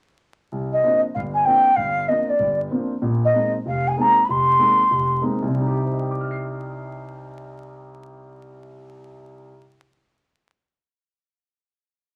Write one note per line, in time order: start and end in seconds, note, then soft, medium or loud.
0.52 0.78 C2 medium
0.73 1.01 D#5 medium
0.83 1.03 F3 soft
0.83 1.03 A#3 soft
0.83 1.04 C4 soft
0.83 1.04 D4 medium
1.15 1.42 G1 medium
1.15 1.21 F5 medium
1.34 1.46 G#5 medium
1.45 1.66 F3 soft
1.45 1.67 A#3 soft
1.45 1.67 C4 soft
1.45 1.67 D4 medium
1.45 1.77 G5 medium
1.76 2.04 G1 medium
1.76 2.10 F5 medium
2.08 2.29 F3 soft
2.08 2.29 A#3 soft
2.08 2.29 C4 soft
2.08 2.29 D4 soft
2.08 2.31 D#5 medium
2.29 2.60 D5 medium
2.39 2.66 G1 medium
2.71 2.91 F3 medium
2.71 2.91 A#3 soft
2.71 2.91 C4 soft
2.71 2.92 D4 medium
3.02 3.29 A#1 medium
3.02 3.29 A#2 medium
3.25 3.53 D#5 medium
3.33 3.54 G#3 soft
3.33 3.54 A#3 soft
3.33 3.54 C4 soft
3.33 3.54 D#4 soft
3.66 3.92 F1 medium
3.66 3.89 F5 medium
3.88 4.03 G#5 medium
3.97 4.17 G#3 soft
3.97 4.17 A#3 soft
3.97 4.18 C4 soft
3.97 4.18 D#4 medium
4.01 4.27 A#5 medium
4.25 4.32 B5 medium
4.29 4.56 F1 medium
4.29 5.24 C6 medium
4.59 4.80 G#3 soft
4.59 4.80 A#3 soft
4.59 4.80 C4 soft
4.59 4.80 D#4 medium
4.91 5.18 F1 medium
5.21 5.42 G#3 medium
5.21 5.43 A#3 soft
5.21 5.43 C4 soft
5.21 5.43 D#4 medium
5.42 9.49 C2 medium
5.48 9.52 C3 medium
5.55 9.56 G3 medium
5.61 9.59 D#4 soft
5.67 9.62 G4 medium
5.86 9.51 C5 soft
5.93 9.55 D#5 soft
6.02 9.59 G5 soft
6.11 9.64 D6 soft
6.21 9.69 F6 soft
6.31 9.74 C7 soft